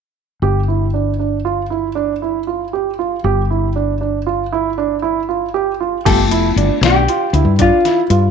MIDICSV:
0, 0, Header, 1, 6, 480
1, 0, Start_track
1, 0, Tempo, 511945
1, 403, Time_signature, 11, 3, 24, 8
1, 7789, End_track
2, 0, Start_track
2, 0, Title_t, "Hollow-body jazz guitar"
2, 0, Program_c, 0, 26
2, 5682, Note_on_c, 0, 69, 68
2, 6418, Note_off_c, 0, 69, 0
2, 6422, Note_on_c, 0, 67, 66
2, 7141, Note_on_c, 0, 65, 71
2, 7154, Note_off_c, 0, 67, 0
2, 7789, Note_off_c, 0, 65, 0
2, 7789, End_track
3, 0, Start_track
3, 0, Title_t, "Grand piano"
3, 0, Program_c, 1, 0
3, 399, Note_on_c, 1, 67, 67
3, 554, Note_off_c, 1, 67, 0
3, 639, Note_on_c, 1, 64, 54
3, 794, Note_off_c, 1, 64, 0
3, 878, Note_on_c, 1, 62, 58
3, 1034, Note_off_c, 1, 62, 0
3, 1119, Note_on_c, 1, 62, 56
3, 1274, Note_off_c, 1, 62, 0
3, 1358, Note_on_c, 1, 65, 60
3, 1514, Note_off_c, 1, 65, 0
3, 1597, Note_on_c, 1, 64, 56
3, 1753, Note_off_c, 1, 64, 0
3, 1831, Note_on_c, 1, 62, 65
3, 1989, Note_off_c, 1, 62, 0
3, 2083, Note_on_c, 1, 64, 56
3, 2237, Note_off_c, 1, 64, 0
3, 2319, Note_on_c, 1, 65, 53
3, 2474, Note_off_c, 1, 65, 0
3, 2562, Note_on_c, 1, 67, 60
3, 2717, Note_off_c, 1, 67, 0
3, 2802, Note_on_c, 1, 65, 58
3, 2957, Note_off_c, 1, 65, 0
3, 3043, Note_on_c, 1, 67, 72
3, 3197, Note_off_c, 1, 67, 0
3, 3286, Note_on_c, 1, 64, 58
3, 3439, Note_off_c, 1, 64, 0
3, 3522, Note_on_c, 1, 62, 61
3, 3676, Note_off_c, 1, 62, 0
3, 3757, Note_on_c, 1, 62, 57
3, 3913, Note_off_c, 1, 62, 0
3, 3999, Note_on_c, 1, 65, 62
3, 4155, Note_off_c, 1, 65, 0
3, 4242, Note_on_c, 1, 64, 64
3, 4397, Note_off_c, 1, 64, 0
3, 4479, Note_on_c, 1, 62, 71
3, 4635, Note_off_c, 1, 62, 0
3, 4710, Note_on_c, 1, 64, 66
3, 4869, Note_off_c, 1, 64, 0
3, 4957, Note_on_c, 1, 65, 55
3, 5114, Note_off_c, 1, 65, 0
3, 5196, Note_on_c, 1, 67, 66
3, 5352, Note_off_c, 1, 67, 0
3, 5442, Note_on_c, 1, 65, 59
3, 5597, Note_off_c, 1, 65, 0
3, 5676, Note_on_c, 1, 67, 76
3, 5833, Note_off_c, 1, 67, 0
3, 5919, Note_on_c, 1, 64, 68
3, 6075, Note_off_c, 1, 64, 0
3, 6163, Note_on_c, 1, 62, 67
3, 6318, Note_off_c, 1, 62, 0
3, 6407, Note_on_c, 1, 62, 64
3, 6560, Note_off_c, 1, 62, 0
3, 6650, Note_on_c, 1, 65, 61
3, 6802, Note_off_c, 1, 65, 0
3, 6883, Note_on_c, 1, 64, 62
3, 7038, Note_off_c, 1, 64, 0
3, 7120, Note_on_c, 1, 62, 79
3, 7275, Note_off_c, 1, 62, 0
3, 7364, Note_on_c, 1, 64, 67
3, 7518, Note_off_c, 1, 64, 0
3, 7600, Note_on_c, 1, 65, 61
3, 7756, Note_off_c, 1, 65, 0
3, 7789, End_track
4, 0, Start_track
4, 0, Title_t, "Tine electric piano"
4, 0, Program_c, 2, 4
4, 5689, Note_on_c, 2, 59, 55
4, 5691, Note_on_c, 2, 57, 57
4, 5696, Note_on_c, 2, 65, 65
4, 6358, Note_off_c, 2, 59, 0
4, 6360, Note_off_c, 2, 57, 0
4, 6362, Note_off_c, 2, 65, 0
4, 6394, Note_on_c, 2, 57, 59
4, 6399, Note_on_c, 2, 59, 52
4, 6399, Note_on_c, 2, 62, 66
4, 6567, Note_off_c, 2, 57, 0
4, 6569, Note_off_c, 2, 59, 0
4, 6569, Note_off_c, 2, 62, 0
4, 7789, End_track
5, 0, Start_track
5, 0, Title_t, "Fretless electric bass"
5, 0, Program_c, 3, 35
5, 394, Note_on_c, 3, 31, 55
5, 3001, Note_off_c, 3, 31, 0
5, 3038, Note_on_c, 3, 31, 60
5, 5644, Note_off_c, 3, 31, 0
5, 5680, Note_on_c, 3, 31, 73
5, 5910, Note_off_c, 3, 31, 0
5, 5910, Note_on_c, 3, 29, 74
5, 6144, Note_off_c, 3, 29, 0
5, 6151, Note_on_c, 3, 31, 69
5, 6271, Note_off_c, 3, 31, 0
5, 6388, Note_on_c, 3, 35, 81
5, 6623, Note_off_c, 3, 35, 0
5, 6874, Note_on_c, 3, 38, 67
5, 6976, Note_off_c, 3, 38, 0
5, 6982, Note_on_c, 3, 43, 61
5, 7220, Note_off_c, 3, 43, 0
5, 7594, Note_on_c, 3, 43, 69
5, 7789, Note_off_c, 3, 43, 0
5, 7789, End_track
6, 0, Start_track
6, 0, Title_t, "Drums"
6, 5683, Note_on_c, 9, 36, 94
6, 5684, Note_on_c, 9, 42, 74
6, 5684, Note_on_c, 9, 49, 76
6, 5777, Note_off_c, 9, 36, 0
6, 5778, Note_off_c, 9, 42, 0
6, 5778, Note_off_c, 9, 49, 0
6, 5920, Note_on_c, 9, 42, 57
6, 6014, Note_off_c, 9, 42, 0
6, 6165, Note_on_c, 9, 42, 45
6, 6259, Note_off_c, 9, 42, 0
6, 6403, Note_on_c, 9, 38, 87
6, 6403, Note_on_c, 9, 42, 65
6, 6497, Note_off_c, 9, 38, 0
6, 6497, Note_off_c, 9, 42, 0
6, 6643, Note_on_c, 9, 42, 51
6, 6736, Note_off_c, 9, 42, 0
6, 6879, Note_on_c, 9, 42, 50
6, 6973, Note_off_c, 9, 42, 0
6, 7115, Note_on_c, 9, 42, 58
6, 7118, Note_on_c, 9, 36, 75
6, 7209, Note_off_c, 9, 42, 0
6, 7212, Note_off_c, 9, 36, 0
6, 7361, Note_on_c, 9, 38, 26
6, 7361, Note_on_c, 9, 42, 49
6, 7455, Note_off_c, 9, 38, 0
6, 7455, Note_off_c, 9, 42, 0
6, 7597, Note_on_c, 9, 42, 47
6, 7691, Note_off_c, 9, 42, 0
6, 7789, End_track
0, 0, End_of_file